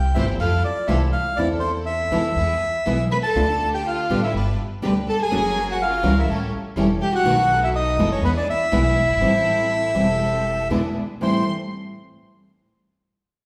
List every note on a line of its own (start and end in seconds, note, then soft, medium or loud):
0.00 0.12 C2 loud
0.00 0.12 C4 medium
0.00 0.12 E4 medium
0.00 0.12 G4 loud
0.00 0.16 G5 loud
0.14 0.35 G1 loud
0.14 0.24 C3 loud
0.14 0.25 E3 loud
0.14 0.25 A3 loud
0.14 0.36 C4 loud
0.14 0.25 C4 loud
0.14 0.36 E4 medium
0.14 0.25 F4 loud
0.14 0.36 G4 loud
0.14 0.26 E5 loud
0.39 0.60 F2 loud
0.39 0.60 E4 medium
0.39 0.60 F4 medium
0.39 0.60 A4 loud
0.39 0.63 F5 loud
0.64 0.87 D5 medium
0.87 1.09 C2 loud
0.87 0.97 C3 medium
0.87 0.98 E3 loud
0.87 0.98 A3 loud
0.87 0.98 C4 loud
0.87 1.09 E4 medium
0.87 1.09 F4 medium
0.87 0.98 F4 loud
0.87 1.09 A4 loud
0.87 0.99 E5 loud
1.12 1.38 F5 medium
1.36 2.08 E2 loud
1.36 1.47 E3 medium
1.36 1.47 A3 medium
1.36 2.08 C4 medium
1.36 1.47 C4 loud
1.36 2.08 E4 medium
1.36 1.48 E4 loud
1.36 2.08 A4 loud
1.36 1.48 D5 loud
1.60 1.71 C5 medium
1.86 3.07 E5 loud
2.11 2.32 E2 loud
2.11 2.21 B2 medium
2.11 2.21 E3 loud
2.11 2.21 G#3 loud
2.11 2.21 B3 medium
2.11 2.33 C4 medium
2.11 2.33 E4 medium
2.11 2.21 E4 loud
2.11 2.33 A4 medium
2.36 2.57 E2 loud
2.36 2.57 B3 medium
2.36 2.58 E4 medium
2.36 2.58 G#4 medium
2.86 3.07 B1 loud
2.86 2.96 B2 medium
2.86 2.96 E3 medium
2.86 2.96 G#3 medium
2.86 3.07 B3 medium
2.86 2.96 B3 loud
2.86 3.08 E4 medium
2.86 2.96 E4 loud
2.86 3.08 G#4 medium
3.11 3.17 B4 loud
3.11 3.17 B5 loud
3.23 3.69 A4 loud
3.23 3.70 A5 loud
3.35 4.06 D2 loud
3.35 3.45 D3 loud
3.35 3.45 A3 loud
3.35 4.07 D4 medium
3.35 3.46 D4 loud
3.35 4.07 F4 medium
3.35 3.45 F4 loud
3.35 4.07 A4 loud
3.73 3.85 G4 medium
3.73 3.87 G5 medium
3.86 4.20 F4 medium
3.86 4.21 F5 loud
4.10 4.31 A1 loud
4.10 4.19 B2 medium
4.10 4.19 D3 loud
4.10 4.19 G3 medium
4.10 4.20 B3 medium
4.10 4.31 D4 medium
4.10 4.31 F4 medium
4.10 4.20 G4 loud
4.10 4.31 A4 loud
4.23 4.34 E4 medium
4.23 4.34 E5 medium
4.34 4.55 G1 medium
4.34 4.55 D4 medium
4.34 4.55 G4 medium
4.34 4.55 B4 loud
4.82 5.04 D2 loud
4.82 4.92 B2 medium
4.82 4.92 D3 medium
4.82 4.92 G3 loud
4.82 4.92 B3 loud
4.82 5.04 D4 medium
4.82 4.93 G4 loud
4.82 5.04 G4 medium
4.82 5.04 B4 loud
5.08 5.20 A4 loud
5.08 5.20 A5 loud
5.21 5.66 G#4 loud
5.21 5.67 G#5 loud
5.31 6.01 F#1 medium
5.31 5.41 C#3 medium
5.31 5.41 F#3 medium
5.31 5.41 A#3 medium
5.31 5.41 C#4 loud
5.31 6.01 C#4 medium
5.31 6.01 F#4 medium
5.31 5.41 F#4 loud
5.31 6.02 A#4 loud
5.69 5.80 F#4 medium
5.69 5.82 F#5 medium
5.82 6.15 F4 medium
5.82 6.19 F5 loud
6.03 6.24 C#2 loud
6.03 6.13 E3 loud
6.03 6.13 G3 loud
6.03 6.13 C#4 loud
6.03 6.25 C#4 medium
6.03 6.14 E4 loud
6.03 6.25 F#4 medium
6.03 6.25 A#4 loud
6.18 6.29 E4 medium
6.18 6.30 E5 medium
6.28 6.49 A1 loud
6.28 6.49 C#4 loud
6.28 6.49 G4 medium
6.28 6.49 A4 medium
6.76 6.97 E1 loud
6.76 6.86 E3 loud
6.76 6.86 G3 loud
6.76 6.98 C#4 medium
6.76 6.86 C#4 medium
6.76 6.87 E4 loud
6.76 6.98 G4 medium
6.76 6.98 A4 medium
7.01 7.13 G4 loud
7.01 7.14 G5 loud
7.14 7.59 F#4 medium
7.14 7.60 F#5 loud
7.24 7.95 B1 loud
7.24 7.34 B2 loud
7.24 7.35 D#3 loud
7.24 7.35 A3 loud
7.24 7.95 B3 medium
7.24 7.35 B3 loud
7.24 7.95 D#4 medium
7.24 7.35 F#4 loud
7.24 7.95 A4 loud
7.62 7.68 E4 medium
7.62 7.70 E5 medium
7.74 8.09 D#4 medium
7.74 8.09 D#5 loud
7.97 8.19 F#1 loud
7.97 8.08 B2 loud
7.97 8.08 E3 loud
7.97 8.08 G#3 loud
7.97 8.20 B3 medium
7.97 8.08 B3 loud
7.97 8.20 D#4 medium
7.97 8.09 E4 loud
7.97 8.20 A4 loud
8.12 8.23 C#4 medium
8.12 8.23 C#5 loud
8.21 8.43 E2 loud
8.21 8.29 B3 medium
8.21 8.44 B3 loud
8.21 8.44 E4 medium
8.21 8.44 G#4 loud
8.21 8.30 B4 loud
8.36 8.47 D4 medium
8.36 8.48 D5 medium
8.48 10.67 E4 medium
8.48 10.68 E5 loud
8.72 8.93 B1 loud
8.72 8.81 B2 loud
8.72 8.81 E3 loud
8.72 8.82 G#3 loud
8.72 8.93 B3 medium
8.72 8.82 B3 loud
8.72 8.93 E4 medium
8.72 8.82 E4 loud
8.72 8.93 G#4 loud
9.03 9.09 F#1 medium
9.09 9.15 G1 medium
9.15 9.20 G#1 medium
9.21 9.92 A1 loud
9.21 9.31 E3 medium
9.21 9.31 G3 medium
9.21 9.92 C4 medium
9.21 9.31 C4 loud
9.21 9.31 E4 loud
9.21 9.92 G4 medium
9.21 9.92 A4 medium
9.94 10.67 E1 loud
9.94 10.04 E3 medium
9.94 10.04 G3 loud
9.94 10.05 C4 medium
9.94 10.67 C4 medium
9.94 10.05 E4 loud
9.94 10.67 G4 medium
9.94 10.67 A4 loud
10.70 10.92 E2 loud
10.70 10.80 B2 medium
10.70 10.80 D3 medium
10.70 10.80 G#3 loud
10.70 10.80 B3 loud
10.70 10.92 D4 medium
10.70 10.80 E4 loud
10.70 10.93 E4 medium
10.70 10.93 G#4 medium
11.21 11.42 A1 medium
11.21 11.41 A2 medium
11.21 11.41 E3 medium
11.21 11.41 G3 medium
11.21 11.42 C4 medium
11.21 11.42 E4 loud
11.21 11.42 G4 medium
11.21 11.42 A4 medium
11.21 11.45 C5 medium
11.21 11.45 C6 medium